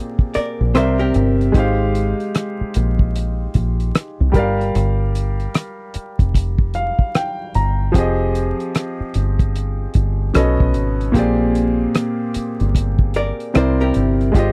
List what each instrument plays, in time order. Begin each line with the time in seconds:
Already playing: grand piano A#2 A#3 C4 G4 G#4 D5
0.19 kick
0.34 hollow-body jazz guitar A#4 D5, muted fingered electric bass stroke, closed hi-hat
0.61 fingered electric bass A#1
0.74 fingered electric bass C2, grand piano C3 C4 A#4 D5 E5, hollow-body jazz guitar C5, cross-stick, closed hi-hat
0.99 hollow-body jazz guitar G4 A#4
1.14 fingered electric bass G1, closed hi-hat
1.41 closed hi-hat
1.52 fingered electric bass G#1, grand piano G#3 D#4 G4, kick, closed hi-hat
1.57 grand piano C5 F5
1.95 closed hi-hat
2.20 closed hi-hat
2.35 cross-stick, closed hi-hat
2.61 muted fingered electric bass stroke
2.74 fingered electric bass A#1, closed hi-hat
2.99 kick
3.16 closed hi-hat
3.54 fingered electric bass A#1, kick, closed hi-hat
3.80 closed hi-hat
3.95 cross-stick, closed hi-hat
4.20 fingered electric bass C2
4.32 fingered electric bass G1, grand piano G3 G4 A#4, kick, closed hi-hat
4.37 grand piano D5 F5
4.61 closed hi-hat
4.75 fingered electric bass G1, closed hi-hat
5.15 closed hi-hat
5.40 closed hi-hat
5.54 cross-stick, closed hi-hat
5.94 muted fingered electric bass stroke, closed hi-hat
6.19 fingered electric bass F1, kick, closed hi-hat
6.34 kick, closed hi-hat
6.59 kick
6.74 grand piano F5, closed hi-hat
6.99 kick
7.15 grand piano G5, cross-stick, closed hi-hat
7.54 fingered electric bass G1, grand piano A#5, closed hi-hat
7.92 fingered electric bass F1, grand piano F3 C4 G4, kick, closed hi-hat
7.97 grand piano G#4 D#5
8.35 closed hi-hat
8.60 closed hi-hat
8.75 cross-stick, closed hi-hat
9.00 muted fingered electric bass stroke
9.14 fingered electric bass G1, closed hi-hat
9.39 kick, closed hi-hat
9.56 closed hi-hat
9.94 fingered electric bass G1, kick, closed hi-hat
10.34 fingered electric bass B1, grand piano B2 B3 C#4 A4 D#5, cross-stick, closed hi-hat
10.60 fingered electric bass B1, kick
10.74 fingered electric bass G#1, closed hi-hat
11.01 closed hi-hat
11.12 fingered electric bass A#1, grand piano A#2 A#3 C4, kick, closed hi-hat
11.16 grand piano G4 G#4 D5
11.55 closed hi-hat
11.95 cross-stick, closed hi-hat
12.34 muted fingered electric bass stroke, closed hi-hat
12.60 fingered electric bass G1, closed hi-hat
12.75 kick, closed hi-hat
12.99 kick
13.14 hollow-body jazz guitar A#4 D5, closed hi-hat
13.40 closed hi-hat
13.54 fingered electric bass C2, grand piano C3 C4 E4 A#4 D5, hollow-body jazz guitar C5, cross-stick, closed hi-hat
13.81 hollow-body jazz guitar G4 A#4
13.94 fingered electric bass G1, closed hi-hat
14.21 closed hi-hat
14.32 fingered electric bass G#1, grand piano G#3 F4 G4, kick, closed hi-hat
14.37 grand piano C5 D#5